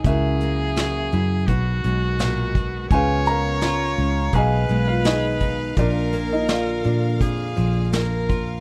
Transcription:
Already playing: string section C#3
0.04 fingered electric bass C#2, nylon-string guitar C#3 F#4, string section F#3 A#3 E4, upright piano E4 A#4 E5, viola G#4, kick, closed hi-hat
0.40 nylon-string guitar A#3, closed hi-hat
0.76 nylon-string guitar F#4, snare, closed hi-hat
1.12 fingered electric bass F#2, nylon-string guitar E4, closed hi-hat
1.47 fingered electric bass B1, nylon-string guitar B2 F#4, string section D#3 G#3 F#4 B4, viola F#4, kick, closed hi-hat
1.84 fingered electric bass B1, nylon-string guitar G#3, closed hi-hat
2.19 nylon-string guitar A#2, snare, closed hi-hat
2.55 nylon-string guitar B2, kick, closed hi-hat
2.89 fingered electric bass C#2, string section C#3 B3 F5, nylon-string guitar C#3, viola C#5, upright piano G#5, kick, closed hi-hat
2.93 nylon-string guitar F4, upright piano G#4 B4 F5
3.26 nylon-string guitar B3, upright piano A#5, closed hi-hat
3.30 upright piano A#4 F5
3.61 nylon-string guitar F4, snare, closed hi-hat
3.97 fingered electric bass C#2, nylon-string guitar C#4, closed hi-hat
4.32 fingered electric bass B1, nylon-string guitar B2 G#4, string section D#3 B3, viola B4, upright piano G#5, kick, closed hi-hat
4.37 upright piano G#4 D#5 F5
4.69 fingered electric bass B1, nylon-string guitar G#3, closed hi-hat
4.88 upright piano F4 F5
5.04 upright piano D#4 G#4 D#5, nylon-string guitar G#4, snare, closed hi-hat
5.40 nylon-string guitar D#4, kick, closed hi-hat
5.76 fingered electric bass A#1, nylon-string guitar A#2 F4, string section D3 F3 A#3, upright piano D4 F4 A#4 D5, viola A#4, kick, closed hi-hat
6.12 nylon-string guitar A#3, closed hi-hat
6.32 upright piano D#4 D#5
6.48 nylon-string guitar F4, upright piano F4 D5 F5, snare, closed hi-hat
6.84 fingered electric bass A#2, nylon-string guitar D4, closed hi-hat
7.20 nylon-string guitar F2, viola G#4, kick, closed hi-hat
7.56 fingered electric bass A#1, nylon-string guitar F3, closed hi-hat
7.93 nylon-string guitar A#3, viola A#4, snare, closed hi-hat
8.29 nylon-string guitar F4, kick, closed hi-hat

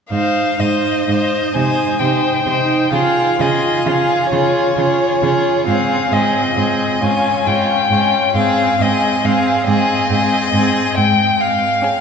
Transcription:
0.10 cello G#2, viola D#4, violin C5 F5
0.59 cello G#2, viola D#4, violin C5 D#5
1.08 cello G#2, viola D#4, violin C5
1.54 cello C3, viola D#4, violin C5 G#5
1.99 cello C3, viola D#4, violin C5 G5
2.45 cello C3, viola D#4, violin C5
2.92 cello C#3, viola F4, violin G#4 F5
3.39 cello C#3, viola F4, violin G#4 D#5
3.85 cello C#3, viola F4, violin G#4 F5
4.31 cello C#3, viola F4, violin G#4 C#5
4.77 cello C#3, viola F4, violin G#4
5.22 cello C#3, viola F4, violin G#4
5.66 cello G#2, viola C4, violin G#4 F5
6.11 cello G#2, viola C4, violin G#4 D#5
6.56 cello G#2, viola C4, violin G#4
7.01 cello G#2, viola C#4, violin F4 G#5
7.45 cello G#2, viola C#4, violin F4 G5
7.90 cello G#2, viola C#4, violin F4
8.35 cello G#2, viola C4, violin G#4 F5
8.79 cello G#2, viola C4, violin G#4 D#5
9.23 cello G#2, viola C4, violin G#4 F5
9.67 cello G#2, viola C4, violin G#4 D#5
10.10 cello G#2, viola C4, violin G#4
10.54 cello G#2, viola C4, violin G#4
10.97 cello G#2, violin G5
11.41 violin F5
11.82 viola C#4, violin G#4

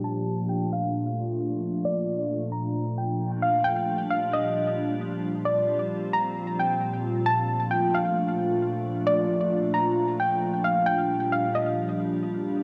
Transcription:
Already playing: ambient pad A#2 F3 D4
0.04 ambient pad A3 F4, synth pluck A5
0.49 synth pluck G5
0.73 synth pluck F5
1.85 synth pluck D5
2.52 synth pluck A#5
2.98 synth pluck G5
3.42 synth pluck F5
3.64 ambient pad A#2 F3 G3 D4 F4, synth pluck G5
4.11 synth pluck F5
4.33 synth pluck D#5
5.45 ambient pad C4, synth pluck D5
6.13 synth pluck A#5
6.59 synth pluck G5
7.26 ambient pad A3 D4, synth pluck A5
7.71 synth pluck G5
7.95 synth pluck F5
9.07 synth pluck D5
9.74 synth pluck A#5
10.20 synth pluck G5
10.64 synth pluck F5
10.86 ambient pad G3, synth pluck G5
11.32 synth pluck F5
11.55 synth pluck D#5

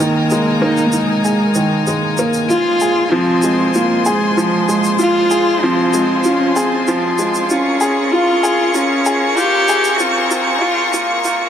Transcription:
Already playing: detuned saw bass D#1, upright piano G#3 A#3 D#4 G#4, string quartet D#4 A#4 G#5 A#5
0.00 upright piano D#3, cello A#3, shaker
0.30 upright piano G#3, shaker
0.61 upright piano A#3, cello D#4
0.77 shaker
0.86 cello A#3
0.92 cello G#3, upright piano D#4, shaker
1.25 upright piano G#4, shaker
1.55 upright piano D#3, shaker
1.87 upright piano G#3, shaker
2.18 upright piano A#3, shaker
2.33 shaker
2.50 detuned saw bass F1, cello F4, upright piano F4, string quartet F4 C5 C6, shaker
2.80 upright piano G#4, shaker
3.12 upright piano F3, cello C4
3.42 upright piano G#3, shaker
3.74 cello A#3, upright piano F4, shaker
4.05 cello G#3, upright piano G#4, shaker
4.37 upright piano F3, shaker
4.69 upright piano G#3, shaker
4.84 shaker
4.99 upright piano F4, cello F4, shaker
5.31 upright piano G#4, shaker
5.63 upright piano F3, cello C4
5.93 upright piano G#3, shaker
6.24 cello C#4, upright piano F4, shaker
6.56 cello C4, upright piano G#4, shaker
6.87 upright piano F3, shaker
7.18 upright piano G#3, shaker
7.34 shaker
7.49 detuned saw bass A#1, cello C#4, upright piano F4, string quartet A#4 A#5 C#6, shaker
7.81 upright piano G#4, shaker
8.11 cello F4, upright piano F4
8.43 upright piano G#4, shaker
8.74 cello C#4, upright piano F4, shaker
9.06 upright piano G#4, shaker
9.36 upright piano F4, cello G4, shaker
9.68 upright piano G#4, shaker
9.84 shaker
9.99 cello C4, upright piano F4, shaker
10.31 upright piano F4, shaker
10.61 upright piano F4, cello F4
10.93 cello A#3, upright piano F4, shaker
11.24 upright piano F4, shaker

